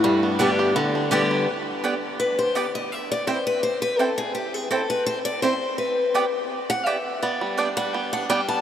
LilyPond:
<<
  \new Staff \with { instrumentName = "Steel-string acoustic guitar" } { \time 4/4 \key g \major \tempo 4 = 167 << { r4 <d g b g'>4 r4 <d g b g'>4 | r2 b'8 c''8 d''8 ees''8 | e''8 d''8 c''8 b'8 c''8 b'8 a'8 aes'8 | g'8 aes'8 a'8 b'8 c''8 d''8 c''4 |
b'4. r4 fis''8 e''4 | d''4. fis''8 g''8 fis''8 g''8 a''8 | } \\ { g,2 d2 | r1 | r1 | r1 |
r1 | r1 | } >> }
  \new Staff \with { instrumentName = "Mandolin" } { \time 4/4 \key g \major r4 <b g' d'' g''>16 r4. r16 <b g' d'' g''>16 r8. | r4 <b g' d'' g''>16 r4. r16 <b g' d'' g''>16 r8. | r4 <c' e' c'' g''>16 r4. r16 <c' e' c'' g''>16 r8. | r4 <c' e' c'' g''>16 r4. r16 <c' e' c'' g''>16 r8. |
r4 <b g' d'' g''>16 r4. r16 <b g' d'' g''>16 r8. | r4 <b g' d'' g''>16 r4. r16 <b g' d'' g''>16 r8. | }
  \new Staff \with { instrumentName = "Five-string banjo" } { \time 4/4 \key g \major <g b'>8 b8 d'8 g'8 b8 d'8 g'8 g8 | r1 | r1 | r1 |
r1 | b8 g8 d'8 g8 b8 d'8 g8 b8 | }
>>